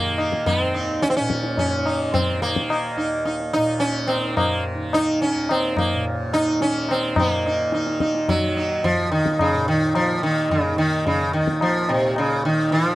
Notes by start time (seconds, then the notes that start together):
Already playing: D#2 A#2 A#3
0.00 D#3
0.18 D#4, tabla na
0.32 tabla ke
0.46 B3, tabla na, tabla ge
0.59 D#2 C4
0.74 D#4
1.02 C#4, tabla te
1.10 C4
1.16 A#2 C#4, tabla te
1.30 tabla ke
1.43 tabla te
1.57 C#4, tabla tin, tabla ge
1.78 D#3
1.86 D#4, tabla na
2.14 C4, tabla tin, tabla ge
2.38 D#3
2.42 A#3, tabla na
2.56 tabla ke
2.70 D#4, tabla na
2.97 D#2 D#4
3.25 D#4, tabla te
3.40 tabla te
3.53 A#2 D#4, tabla na
3.80 C#4, tabla te
4.08 C4, tabla na
4.15 D#3
4.37 A#3, tabla na, tabla ge
4.75 D#3
4.93 D#4, tabla na
5.21 C#4, tabla te
5.34 D#2
5.49 C4, tabla na
5.77 A#3, tabla na, tabla ge
5.93 A#2
6.33 D#4, tabla na
6.52 D#3
6.61 C#4, tabla te
6.89 C4, tabla na
7.16 A#2 A#3 D#4, tabla na, tabla ge
7.46 D#4
7.72 D#3 D#4, tabla te
7.87 tabla te
8.00 D#4, tabla ke
8.15 tabla te
8.28 F#3, tabla tin, tabla ge
8.34 D#3
8.57 D#4
8.84 F3, tabla tin, tabla ge
8.92 D#2
9.12 D#3, tabla na
9.26 tabla ke
9.39 C#3, tabla na, tabla ge
9.53 A#2
9.67 D#3, tabla te
9.95 F3, tabla na
10.12 D#3
10.23 D#3
10.50 C#3, tabla tin, tabla ge
10.72 D#3
10.78 D#3
11.06 C#3, tabla tin, tabla ge
11.30 D#2 D#3
11.34 tabla na
11.48 tabla ke
11.61 F3, tabla na
11.89 A#2 C3, tabla na
12.16 C#3, tabla na
12.45 D#3
12.71 F3, tabla tin